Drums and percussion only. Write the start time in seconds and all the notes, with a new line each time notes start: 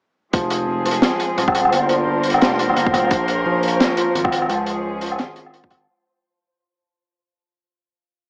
0.33 kick, closed hi-hat
0.50 closed hi-hat
0.86 closed hi-hat
0.91 closed hi-hat
1.02 snare, closed hi-hat
1.20 closed hi-hat
1.38 closed hi-hat
1.48 kick, low woodblock
1.55 closed hi-hat
1.65 low woodblock
1.72 closed hi-hat
1.89 closed hi-hat
2.23 closed hi-hat
2.30 closed hi-hat
2.34 low woodblock
2.41 snare, closed hi-hat
2.59 closed hi-hat
2.70 low woodblock
2.76 closed hi-hat
2.86 kick
2.93 kick, closed hi-hat, low woodblock
3.11 kick, closed hi-hat
3.28 closed hi-hat
3.63 closed hi-hat
3.68 closed hi-hat
3.80 snare, closed hi-hat
3.97 closed hi-hat
4.16 closed hi-hat
4.25 kick, low woodblock
4.32 closed hi-hat
4.42 low woodblock
4.50 closed hi-hat
4.67 closed hi-hat
5.01 closed hi-hat
5.06 closed hi-hat
5.12 low woodblock
5.19 snare, closed hi-hat
5.36 closed hi-hat
5.46 low woodblock
5.54 closed hi-hat
5.64 kick
5.70 kick, closed hi-hat, low woodblock